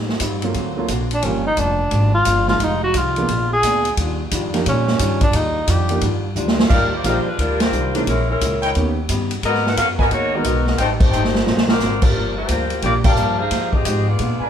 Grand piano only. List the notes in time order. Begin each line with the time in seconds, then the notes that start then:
0.43 D3 F#3 A#3 C4 F4
0.77 D3 F#3 A#3 C4 F4
1.24 F3 G3 A#3 D4 G4
2.48 F3 G#3 C4 D#4 F4
3.17 F3 A#3 B3 D4 G#4
4.54 F3 A#3 D4 D#4 G4
5.90 F3 A#3 D4 D#4 G4
7.04 F3 A#3 D4 D#4 G4
7.95 E3 G#3 A#3 C#4 D#4
8.76 D#3 A#3 B3 C#4 G4
10.34 D#3 G#3 B3 F#4 A#4
11.46 D3 F#3 A#3 C4 F4
12.83 F3 G3 A#3 D4 G4